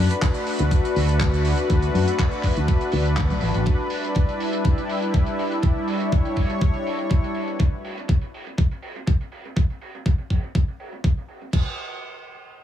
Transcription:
Already playing: analog synth pad A3 D4 F#4 B4
0.11 closed hi-hat
0.22 kick, clap, closed hi-hat
0.34 closed hi-hat
0.47 open hi-hat
0.59 fingered electric bass D2, closed hi-hat
0.71 kick, closed hi-hat
0.85 closed hi-hat
0.96 fingered electric bass D2, open hi-hat
1.09 closed hi-hat
1.20 kick, clap, closed hi-hat
1.34 closed hi-hat
1.45 open hi-hat
1.57 closed hi-hat
1.70 fingered electric bass D2, kick, closed hi-hat
1.82 closed hi-hat
1.94 fingered electric bass F#2, open hi-hat
2.08 closed hi-hat
2.19 kick, clap, closed hi-hat
2.31 closed hi-hat
2.43 kick, clap, open hi-hat
2.56 fingered electric bass D2, closed hi-hat
2.68 kick, closed hi-hat
2.81 closed hi-hat
2.92 fingered electric bass D2, open hi-hat
3.05 closed hi-hat
3.17 kick, clap, closed hi-hat
3.30 fingered electric bass B1, closed hi-hat
3.41 fingered electric bass A1, open hi-hat
3.54 fingered electric bass A1, closed hi-hat
3.66 analog synth pad G3 E4, kick, closed hi-hat
3.90 open hi-hat
4.05 closed hi-hat
4.15 kick, closed hi-hat
4.29 closed hi-hat
4.40 open hi-hat
4.53 closed hi-hat
4.64 kick, closed hi-hat
4.78 closed hi-hat
4.89 open hi-hat
5.02 closed hi-hat
5.14 kick, closed hi-hat
5.26 closed hi-hat
5.39 open hi-hat
5.52 closed hi-hat
5.62 analog synth pad C#5, kick, closed hi-hat
5.88 open hi-hat
6.00 closed hi-hat
6.12 kick, closed hi-hat
6.25 closed hi-hat
6.36 kick, open hi-hat
6.49 closed hi-hat
6.61 kick, closed hi-hat
6.74 closed hi-hat
6.86 open hi-hat
6.99 closed hi-hat
7.09 kick, closed hi-hat
7.24 closed hi-hat
7.35 open hi-hat
7.48 closed hi-hat
7.59 kick, closed hi-hat
7.85 open hi-hat
7.98 closed hi-hat
8.08 kick, closed hi-hat
8.21 closed hi-hat
8.34 open hi-hat
8.47 closed hi-hat
8.58 kick, closed hi-hat
8.71 closed hi-hat
8.82 open hi-hat
8.96 closed hi-hat
9.07 kick, closed hi-hat
9.21 closed hi-hat
9.32 open hi-hat
9.45 closed hi-hat
9.56 kick, closed hi-hat
9.70 closed hi-hat
9.81 open hi-hat
9.95 closed hi-hat
10.06 kick, closed hi-hat
10.18 closed hi-hat
10.30 kick, open hi-hat
10.44 closed hi-hat
10.55 kick, closed hi-hat
10.68 closed hi-hat
10.80 open hi-hat
10.92 closed hi-hat
11.04 kick, closed hi-hat
11.17 closed hi-hat
11.28 open hi-hat
11.42 closed hi-hat
11.53 kick, crash

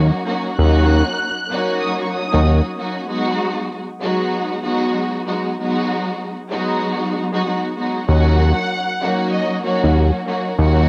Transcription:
Already playing: analog synth bass D#2, string section F#3 A#3 C#4 D#4 F#4
0.26 string section F#3 A#3 C#4 D#4 F#4
0.57 analog synth bass D#2, string section F#3 A#3 C#4 D#4 F#4, violin section F#6
1.50 string section F#3 A#3 C#4 D#4 F#4
1.81 violin section D#6
2.02 violin section C#6
2.13 violin section D#6
2.31 analog synth bass D#2, string section F#3 A#3 C#4 D#4 F#4
2.43 string section F#3 A#3 C#4 D#4 F#4
2.76 string section F#3 A#3 C#4 D#4 F#4
3.07 string section F#3 G#3 B3 D#4 F#4
4.00 string section F#3 G#3 B3 D#4 F#4
4.63 string section F#3 G#3 B3 D#4 F#4
5.26 string section F#3 G#3 B3 D#4 F#4
5.58 string section F#3 G#3 B3 D#4 F#4
6.51 string section F#3 G#3 B3 D#4 F#4
7.32 string section F#3 G#3 B3 D#4 F#4
7.45 string section F#3 G#3 B3 D#4 F#4
7.76 string section F#3 G#3 B3 D#4 F#4
8.07 analog synth bass D#2, string section F#3 A#3 C#4 D#4 F#4, violin section F#5
9.00 string section F#3 A#3 C#4 D#4 F#4
9.32 violin section D#5
9.63 string section F#3 A#3 C#4 D#4 F#4, violin section C#5
9.84 analog synth bass D#2
10.26 string section F#3 A#3 C#4 D#4 F#4
10.57 analog synth bass D#2, string section F#3 A#3 C#4 D#4 F#4, violin section F#5

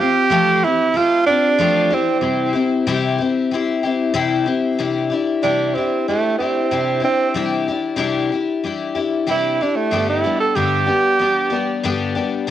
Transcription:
0.00 twelve-string acoustic guitar C4 F4 G4, tenor saxophone G4
0.30 twelve-string acoustic guitar F3 A3 C4 F4 G4
0.64 twelve-string acoustic guitar C4 G4, tenor saxophone E4
0.94 twelve-string acoustic guitar A3 C4 F4 G4, tenor saxophone F4
1.26 twelve-string acoustic guitar C4 F4 G4, tenor saxophone D4
1.58 twelve-string acoustic guitar F3 A3 C4 F4 G4
1.90 twelve-string acoustic guitar C4 E4 G4, tenor saxophone C4
2.21 twelve-string acoustic guitar C3 G3 C4 E4 G4
2.53 twelve-string acoustic guitar C4 E4 G4
2.87 twelve-string acoustic guitar C3 G3 C4 E4 G4
3.18 twelve-string acoustic guitar C4 E4 G4
3.51 twelve-string acoustic guitar G3 C4 E4 G4
3.83 twelve-string acoustic guitar C4 E4 G4
4.14 twelve-string acoustic guitar C3 G3 C4 E4 G4
4.46 twelve-string acoustic guitar C4 E4 G4
4.79 twelve-string acoustic guitar C3 G3 D4 E4 G4
5.10 twelve-string acoustic guitar D4 E4 G4
5.43 twelve-string acoustic guitar C3 G3 D4 E4 G4, tenor saxophone D4
5.74 tenor saxophone C4, twelve-string acoustic guitar E4 G4
5.79 twelve-string acoustic guitar D4
6.08 twelve-string acoustic guitar G3 D4 E4 G4, tenor saxophone A3
6.38 tenor saxophone C4, twelve-string acoustic guitar E4 G4
6.43 twelve-string acoustic guitar D4
6.71 twelve-string acoustic guitar C3 G3 D4 E4 G4
7.00 twelve-string acoustic guitar D4 E4 G4
7.04 tenor saxophone C4
7.34 twelve-string acoustic guitar C3 G3 D4 E4 G4
7.68 twelve-string acoustic guitar D4 E4 G4
7.96 twelve-string acoustic guitar C3 G3 D4 E4 G4
8.32 twelve-string acoustic guitar D4 E4 G4
8.63 twelve-string acoustic guitar G3 D4 E4 G4
8.95 twelve-string acoustic guitar D4 E4 G4
9.27 twelve-string acoustic guitar C3 G3 D4 E4 G4, tenor saxophone E4
9.61 tenor saxophone D4, twelve-string acoustic guitar D4 E4 G4
9.76 tenor saxophone A3
9.91 twelve-string acoustic guitar G2 D3 G3 B3 D4 G4
10.10 tenor saxophone E4
10.24 twelve-string acoustic guitar G3 B3 D4 G4
10.40 tenor saxophone A4
10.55 twelve-string acoustic guitar G2 D3 G3 B3 D4 G4, tenor saxophone G4
10.87 twelve-string acoustic guitar G3 B3 D4 G4
11.20 twelve-string acoustic guitar G3 B3 D4 G4
11.50 twelve-string acoustic guitar G3 B3 D4 G4
11.84 twelve-string acoustic guitar G2 D3 G3 B3 D4 G4
12.15 twelve-string acoustic guitar G3 B3 D4 G4
12.47 twelve-string acoustic guitar G2

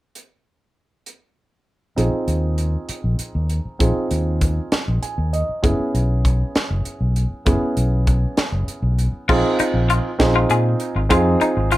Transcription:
0.15 closed hi-hat
1.06 closed hi-hat
1.96 fingered electric bass A#1, grand piano C4 D#4 F4 G#4, closed hi-hat
2.13 muted fingered electric bass stroke
2.28 fingered electric bass D#2, closed hi-hat
2.58 closed hi-hat
2.89 muted fingered electric bass stroke, closed hi-hat
3.04 fingered electric bass A#1
3.19 muted fingered electric bass stroke, closed hi-hat
3.35 fingered electric bass D#2
3.50 closed hi-hat
3.65 muted fingered electric bass stroke
3.79 fingered electric bass A#1, grand piano C4 D#4 F4 G#4, kick, closed hi-hat
3.96 muted fingered electric bass stroke
4.11 fingered electric bass D#2, closed hi-hat
4.41 kick, closed hi-hat
4.72 muted fingered electric bass stroke, snare, closed hi-hat
4.88 fingered electric bass A#1
5.02 grand piano G#5, muted fingered electric bass stroke, closed hi-hat
5.18 fingered electric bass D#2
5.33 grand piano D#5, closed hi-hat
5.49 muted fingered electric bass stroke
5.62 fingered electric bass F#1, grand piano B3 C#4 E4 G#4, kick, closed hi-hat
5.80 muted fingered electric bass stroke
5.94 fingered electric bass B1, closed hi-hat
6.25 kick, closed hi-hat
6.55 muted fingered electric bass stroke, snare, closed hi-hat
6.71 fingered electric bass F#1
6.85 muted fingered electric bass stroke, closed hi-hat
7.01 fingered electric bass B1
7.16 closed hi-hat
7.31 muted fingered electric bass stroke
7.46 fingered electric bass F#1, grand piano B3 C#4 E4 G#4, kick, closed hi-hat
7.62 muted fingered electric bass stroke
7.77 fingered electric bass B1, closed hi-hat
8.07 kick, closed hi-hat
8.37 muted fingered electric bass stroke, snare, closed hi-hat
8.52 fingered electric bass F#1
8.68 muted fingered electric bass stroke, closed hi-hat
8.82 fingered electric bass B1
8.99 closed hi-hat
9.13 muted fingered electric bass stroke
9.29 fingered electric bass A#1, grand piano C4 D#4 F4 G#4, clean electric guitar F4, kick, crash
9.59 clean electric guitar D#4, muted fingered electric bass stroke, closed hi-hat
9.74 fingered electric bass A#1
9.90 clean electric guitar F4, closed hi-hat
10.19 fingered electric bass A#1, grand piano C4 D#4 F4 G#4, kick, snare, closed hi-hat
10.36 clean electric guitar F4
10.50 fingered electric bass A#2, clean electric guitar G#4, closed hi-hat
10.80 closed hi-hat
10.96 fingered electric bass G#1
11.09 fingered electric bass F2, grand piano C4 D#4 F4 G#4, clean electric guitar F4, kick, closed hi-hat
11.41 clean electric guitar D#4, muted fingered electric bass stroke, closed hi-hat
11.57 fingered electric bass G#1
11.71 clean electric guitar F4, closed hi-hat

